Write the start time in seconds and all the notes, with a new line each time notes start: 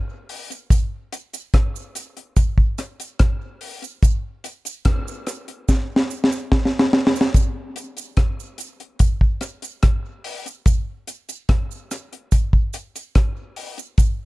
0.29 open hi-hat
0.51 closed hi-hat, cabasa
0.70 kick, closed hi-hat, cabasa
1.13 closed hi-hat, cabasa
1.33 closed hi-hat, cabasa
1.54 kick, cross-stick, closed hi-hat
1.76 cabasa
1.95 closed hi-hat, cabasa
2.17 closed hi-hat
2.36 kick, closed hi-hat, cabasa
2.58 kick
2.78 cross-stick, closed hi-hat, cabasa
3.00 closed hi-hat, cabasa
3.19 kick, cross-stick, closed hi-hat
3.61 open hi-hat
3.82 closed hi-hat, cabasa
4.03 kick, closed hi-hat, cabasa
4.44 closed hi-hat, cabasa
4.65 closed hi-hat, cabasa
4.85 kick, cross-stick, closed hi-hat
5.08 cabasa
5.27 cross-stick, closed hi-hat, cabasa
5.48 closed hi-hat
5.68 kick, snare, cabasa
5.96 snare
6.10 cabasa
6.24 snare
6.32 cabasa
6.52 kick, snare
6.65 snare
6.79 snare
6.93 snare
7.07 snare
7.16 cabasa
7.21 snare
7.34 kick, closed hi-hat, cabasa
7.76 closed hi-hat, cabasa
7.97 closed hi-hat, cabasa
8.17 kick, cross-stick, closed hi-hat
8.40 cabasa
8.58 closed hi-hat, cabasa
8.80 closed hi-hat
8.99 kick, closed hi-hat, cabasa
9.21 kick
9.41 cross-stick, closed hi-hat, cabasa
9.62 closed hi-hat, cabasa
9.83 kick, cross-stick, closed hi-hat
10.24 open hi-hat
10.46 closed hi-hat, cabasa
10.66 kick, closed hi-hat, cabasa
11.07 closed hi-hat, cabasa
11.29 closed hi-hat, cabasa
11.49 kick, cross-stick, closed hi-hat
11.71 cabasa
11.91 cross-stick, closed hi-hat, cabasa
12.13 closed hi-hat
12.32 kick, closed hi-hat, cabasa
12.53 kick
12.73 closed hi-hat, cabasa
12.96 closed hi-hat, cabasa
13.15 kick, cross-stick, closed hi-hat
13.56 open hi-hat
13.78 closed hi-hat, cabasa
13.98 kick, closed hi-hat, cabasa